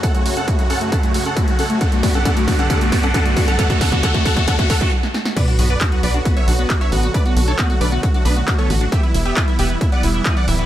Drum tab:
CC |----------------|----------------|----------------|x---------------|
HH |xxoxxxoxxxoxxxox|xxoxxxoxxxoxxxox|xxoxxxoxxxox----|xxoxxxoxxxoxxxox|
CP |----------------|----------------|----------------|----x-------x---|
SD |----------------|----------------|-------------ooo|----------------|
BD |o---o---o---o---|o-o-o-o-o-o-o-o-|oooooooooooo----|o---o---o---o---|

CC |----------------|----------------|
HH |xxoxxxo-xxo-xxox|xxoxxxoxxxoxxxo-|
CP |----x-------x---|----x-------x---|
SD |----------------|----------------|
BD |o---o---o---o---|o---o---o---o---|